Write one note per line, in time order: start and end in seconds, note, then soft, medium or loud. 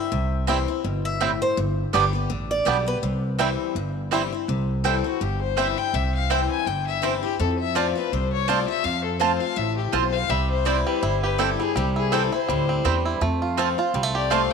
0.00 0.12 C4 soft
0.00 0.11 E4 medium
0.00 0.45 E5 loud
0.12 0.64 C2 medium
0.12 0.81 C3 medium
0.47 0.67 E3 medium
0.47 0.67 G3 medium
0.47 0.58 G3 medium
0.47 0.58 C4 medium
0.47 0.68 C4 loud
0.47 0.58 C4 medium
0.47 0.58 E4 medium
0.47 0.67 E4 loud
0.47 0.58 E4 medium
0.47 0.58 C5 medium
0.47 0.58 G5 loud
0.68 0.85 C4 soft
0.68 0.84 E4 medium
0.84 1.37 G1 medium
0.84 1.19 B2 medium
1.05 1.39 E5 loud
1.20 1.56 A2 medium
1.20 1.30 G3 medium
1.20 1.31 C4 medium
1.20 1.30 C4 medium
1.20 1.31 E4 medium
1.20 1.30 E4 medium
1.20 1.31 C5 loud
1.20 1.31 G5 loud
1.42 1.57 C5 loud
1.57 1.83 G1 medium
1.57 2.27 G2 medium
1.93 2.25 G1 medium
1.93 2.13 D3 medium
1.93 2.13 G3 medium
1.93 2.03 G3 medium
1.93 2.03 B3 medium
1.93 2.14 B3 medium
1.93 2.03 B3 medium
1.93 2.03 D4 medium
1.93 2.04 G4 medium
1.93 2.12 G4 loud
1.93 2.04 D5 loud
1.93 2.04 G5 loud
2.13 2.30 B3 medium
2.13 2.29 G4 medium
2.30 2.61 A1 medium
2.30 2.64 D3 medium
2.51 2.84 D5 loud
2.65 2.97 B1 medium
2.65 2.85 D3 medium
2.65 2.86 G3 medium
2.65 2.76 G3 medium
2.65 2.76 B3 medium
2.65 2.86 B3 medium
2.65 2.76 B3 medium
2.65 2.76 D4 medium
2.65 2.76 G4 medium
2.65 2.85 G4 medium
2.65 2.76 D5 medium
2.65 2.77 G5 loud
2.86 3.03 B3 medium
2.86 3.02 G4 medium
2.86 2.97 B4 loud
3.02 3.55 C2 medium
3.02 3.72 C3 medium
3.39 3.74 E3 medium
3.39 3.74 G3 loud
3.39 3.48 G3 medium
3.39 3.49 C4 medium
3.39 3.74 C4 medium
3.39 3.49 C4 medium
3.39 3.49 E4 loud
3.39 3.49 E4 medium
3.39 3.75 E4 loud
3.39 3.49 C5 medium
3.39 3.49 G5 loud
3.75 4.27 G1 medium
3.75 4.45 G2 medium
4.11 4.31 E3 medium
4.11 4.32 G3 medium
4.11 4.21 G3 medium
4.11 4.22 C4 medium
4.11 4.21 C4 medium
4.11 4.32 C4 medium
4.11 4.22 E4 medium
4.11 4.21 E4 medium
4.11 4.31 E4 loud
4.11 4.22 C5 loud
4.11 4.22 G5 medium
4.32 4.49 C4 medium
4.32 4.48 E4 medium
4.48 5.00 C2 loud
4.48 5.18 C3 medium
4.84 5.04 E3 medium
4.84 5.04 G3 medium
4.84 4.94 C4 medium
4.84 5.04 C4 loud
4.84 4.95 E4 medium
4.84 5.03 E4 medium
4.84 5.04 A4 medium
4.84 4.95 C5 medium
4.84 4.95 G5 loud
5.04 5.21 C4 soft
5.04 5.20 E4 medium
5.04 5.23 F#4 medium
5.21 5.73 G1 medium
5.21 5.91 G2 medium
5.21 5.41 G4 medium
5.42 5.59 C5 medium
5.57 5.77 E3 medium
5.57 5.77 G3 medium
5.57 5.67 C4 medium
5.57 5.77 C4 loud
5.57 5.67 E4 medium
5.57 5.76 E4 medium
5.57 5.67 C5 loud
5.57 5.79 E5 medium
5.57 5.68 G5 loud
5.78 5.94 C4 soft
5.78 5.93 E4 medium
5.78 5.96 G5 loud
5.93 6.46 C2 medium
5.93 6.63 C3 medium
5.93 6.14 E5 medium
6.15 6.32 F5 medium
6.30 6.65 E3 medium
6.30 6.65 G3 medium
6.30 6.40 C4 medium
6.30 6.66 C4 medium
6.30 6.40 E4 loud
6.30 6.66 E4 loud
6.30 6.40 C5 medium
6.30 6.50 G5 medium
6.30 6.41 G5 loud
6.50 6.68 G#5 loud
6.66 7.19 G1 medium
6.66 7.36 G2 medium
6.66 6.86 G5 medium
6.87 7.05 E5 loud
7.02 7.22 E3 medium
7.02 7.22 G3 medium
7.02 7.13 C4 medium
7.02 7.22 C4 medium
7.02 7.13 E4 loud
7.02 7.21 E4 medium
7.02 7.13 C5 loud
7.02 7.22 C5 medium
7.02 7.13 G5 loud
7.22 7.39 C4 soft
7.22 7.38 E4 medium
7.22 7.38 G4 medium
7.39 7.92 F2 medium
7.39 8.09 F2 medium
7.39 7.51 A4 medium
7.59 7.77 E5 loud
7.75 7.95 F3 medium
7.75 7.95 A3 medium
7.75 7.85 C4 medium
7.75 7.95 C4 loud
7.75 7.86 F4 loud
7.75 7.94 F4 loud
7.75 7.86 C5 loud
7.75 7.95 D5 medium
7.75 7.86 A5 loud
7.95 8.12 C4 medium
7.95 8.11 F4 medium
7.95 8.14 B4 medium
8.12 8.64 C2 medium
8.12 8.82 C3 medium
8.12 8.32 C5 loud
8.33 8.50 C#5 loud
8.48 8.67 F3 medium
8.48 8.68 A3 medium
8.48 8.58 C4 loud
8.48 8.68 C4 loud
8.48 8.58 F4 medium
8.48 8.67 F4 loud
8.48 8.58 C5 loud
8.48 8.68 D5 medium
8.48 8.59 A5 loud
8.68 8.85 C4 soft
8.68 8.84 F4 medium
8.68 8.86 E5 loud
8.84 9.54 F2 medium
8.84 9.37 F2 medium
8.84 9.04 F5 loud
9.04 9.21 A4 medium
9.20 9.40 F3 medium
9.20 9.40 A3 loud
9.20 9.31 C4 medium
9.20 9.40 C4 medium
9.20 9.31 F4 medium
9.20 9.39 F4 loud
9.20 9.42 C5 medium
9.20 9.31 C5 loud
9.20 9.31 A5 loud
9.40 9.57 C4 medium
9.40 9.56 F4 medium
9.40 9.58 F5 loud
9.56 9.88 A1 medium
9.56 9.92 A2 medium
9.56 9.76 E5 loud
9.77 9.94 G4 medium
9.92 10.24 B1 medium
9.92 10.28 B2 medium
9.92 10.03 C4 medium
9.92 10.03 F4 loud
9.92 10.14 C5 medium
9.92 10.04 C5 medium
9.92 10.04 A5 loud
10.12 10.32 F5 loud
10.29 10.82 C2 loud
10.29 10.99 C3 medium
10.29 10.86 G3 medium
10.29 10.50 E5 medium
10.51 10.67 C5 medium
10.65 11.01 E3 medium
10.65 11.01 G3 medium
10.65 10.76 C4 medium
10.65 11.01 C4 medium
10.65 10.76 E4 loud
10.65 11.02 E4 medium
10.65 11.02 E4 loud
10.65 10.76 C5 medium
10.65 10.85 D5 loud
10.65 10.77 G5 loud
10.86 11.36 G3 medium
10.86 11.03 B4 medium
11.02 11.55 G1 medium
11.02 11.72 G2 medium
11.02 11.38 E4 medium
11.02 11.22 C5 loud
11.22 11.73 G4 medium
11.22 11.40 B4 medium
11.38 11.58 E3 medium
11.38 11.59 G3 medium
11.38 11.49 C4 medium
11.38 11.59 C4 medium
11.38 11.92 E4 medium
11.38 11.49 E4 medium
11.38 11.58 E4 loud
11.38 11.59 A4 medium
11.38 11.49 C5 loud
11.38 11.50 G5 loud
11.59 11.74 G3 medium
11.59 11.76 C4 medium
11.59 11.75 E4 medium
11.59 11.77 G#4 medium
11.75 12.28 C2 medium
11.75 12.46 C3 loud
11.75 12.28 G3 medium
11.75 11.96 G4 medium
11.96 12.31 E4 medium
11.96 12.14 G#4 medium
12.12 12.31 E3 medium
12.12 12.32 G3 medium
12.12 12.69 C4 medium
12.12 12.22 C4 medium
12.12 12.32 C4 medium
12.12 12.22 E4 medium
12.12 12.31 E4 loud
12.12 12.33 A4 medium
12.12 12.22 C5 loud
12.12 12.22 G5 loud
12.32 12.49 C4 medium
12.32 12.48 E4 medium
12.32 12.82 E4 medium
12.32 13.18 C5 loud
12.49 12.80 D2 medium
12.49 12.84 A2 medium
12.49 12.84 G3 medium
12.69 13.58 C4 medium
12.85 13.16 E2 medium
12.85 13.20 G2 medium
12.85 13.21 G3 medium
12.85 12.95 C4 medium
12.85 12.95 E4 loud
12.85 12.95 C5 loud
12.85 12.95 G5 loud
13.05 13.22 E4 medium
13.21 13.73 F2 medium
13.21 13.91 F2 medium
13.21 13.74 A3 medium
13.42 13.78 F4 medium
13.57 13.77 F3 medium
13.57 13.77 A3 loud
13.57 13.68 C4 medium
13.57 14.53 C4 medium
13.57 13.78 C4 medium
13.57 13.68 F4 medium
13.57 13.77 F4 loud
13.57 13.68 C5 loud
13.57 13.68 A5 loud
13.78 13.94 C4 soft
13.78 13.94 F4 medium
13.78 14.28 F4 medium
13.94 14.46 C2 medium
13.94 14.53 C3 medium
13.94 14.03 G3 medium
14.03 14.30 A3 medium
14.15 14.53 G4 medium
14.15 14.32 D5 loud
14.30 14.53 F3 medium
14.30 14.53 A3 medium
14.30 14.40 C4 medium
14.30 14.53 C4 loud
14.30 14.41 F4 loud
14.30 14.53 F4 loud
14.30 14.41 C5 loud
14.30 14.52 F5 medium
14.30 14.41 A5 loud